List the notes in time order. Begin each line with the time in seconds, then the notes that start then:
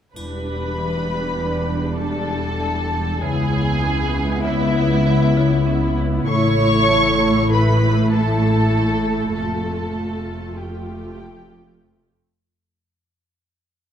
0.15 E1 E2 G3 D4 B4 B5, triangle
0.48 E2
0.79 E3
1.08 E3
1.39 E2
1.69 E2
1.99 E2 A4 A5
2.30 E2
2.60 E3
2.91 E2
3.22 C#2 C#3 B3 E4 G#4 G#5
3.53 C#3
3.83 C#4
4.14 C#4
4.44 C#3 E4 E5
4.76 C#3
5.06 C#3
5.37 C#3
5.67 C#4
5.97 C#3
6.28 A1 A2 A3 E4 C#5 C#6
6.58 A2
6.89 A3
7.20 A3
7.50 A2 B4 B5
7.82 A2
8.12 A2 A3 E4 A4 A5
8.42 A2
8.73 A3
9.35 F1 F2 A3 F4 A4 A5
9.66 F2
9.96 F3
10.27 F3
10.57 F2 A3 F4 G4 G5
10.87 F2
11.19 F2
11.49 F2
11.80 F3
12.10 F2